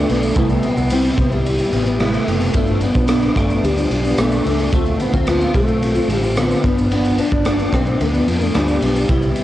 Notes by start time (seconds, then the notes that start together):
Already playing: A3
0.08 B1 G2 F3 B3 D4, ride, shaker
0.23 shaker
0.36 C2 C3 G3 A3 B3 E4, kick, ride, shaker
0.49 shaker
0.63 B3, ride, shaker
0.77 C2 G3 B3 E4, shaker
0.90 C3 G3 B3 C4 E4, ride, shaker
1.04 shaker
1.18 C2 C3 G3 B3 E4, kick, ride, shaker
1.31 G3 B3 E4, shaker
1.46 ride, shaker
1.58 G3 B3 E4, shaker
1.72 A1 C3 G3 B3 E4, ride, shaker
1.85 G3 B3 E4, shaker
1.99 C3 G3 A3 B3 E4, cross-stick, ride, shaker
2.14 shaker
2.26 F#1 C3 G3 B3 E4, ride, shaker
2.40 shaker
2.53 G1 G2 F3 A3 B3 D4, kick, ride, tambourine, shaker
2.67 shaker
2.81 B3, ride, tambourine, shaker
2.93 B1 F3 B3 D4, kick, shaker
3.07 G2 F3 B3 D4, cross-stick, ride, tambourine, shaker
3.22 shaker
3.35 G1 G2 F3 A3 B3 D4, kick, cross-stick, ride, shaker
3.50 shaker
3.63 D2 G3, ride, tambourine, shaker
3.76 F3 B3 D4, shaker
3.89 B1 G2 F3 B3 D4, ride, tambourine, shaker
4.03 F3 B3 D4, shaker
4.18 B1 G2 F3 A3 B3 D4, cross-stick, ride, tambourine, shaker
4.32 shaker
4.44 C#2 G2 F3 B3 D4, ride, tambourine, shaker
4.59 shaker
4.72 D2 D3 A3 C4 F4, kick, ride, tambourine, shaker
4.86 shaker
5.00 B3, ride, tambourine, shaker
5.13 D2 A3 C4 F4, kick, shaker
5.27 D3 A3 B3 C4 F4, cross-stick, ride, tambourine, shaker
5.41 shaker
5.54 B1 D3 A3 C4 F4, kick, ride, tambourine, shaker
5.68 shaker
5.83 ride, tambourine, shaker
5.95 A3 C4 F4, shaker
6.08 A1 D3 A3 C4 F4, ride, tambourine, shaker
6.16 G3
6.21 A3 C4 F4, shaker
6.35 D3 A3 B3 C4 F4, cross-stick, ride, tambourine, shaker
6.51 shaker
6.62 G1 G2 F3 B3 D4, kick, ride, tambourine, shaker
6.78 shaker
6.89 G2 F3 B3 D4, ride, tambourine, shaker
7.05 shaker
7.18 D4, ride, tambourine, shaker
7.30 G1 F3 B3 D4, kick, shaker
7.44 G2 F3 B3 D4, cross-stick, ride, tambourine, shaker
7.59 shaker
7.71 B1 G2 F3 B3 C4 D4, kick, cross-stick, ride, shaker
7.85 F3 B3 D4, shaker
8.00 D2 B3, ride, shaker
8.12 F3 B3 D4, shaker
8.26 F2 G2 F3 B3 D4, ride, tambourine, shaker
8.40 F3 B3 D4, shaker
8.45 A3
8.53 D2 G2 F3 G3 B3 D4, cross-stick, ride, tambourine, shaker
8.68 shaker
8.80 B1 G2 F3 B3 D4, ride, tambourine, shaker
8.96 shaker
9.08 C2 C3 G3 B3 E4, kick, ride, tambourine, shaker
9.22 shaker
9.36 ride, tambourine, shaker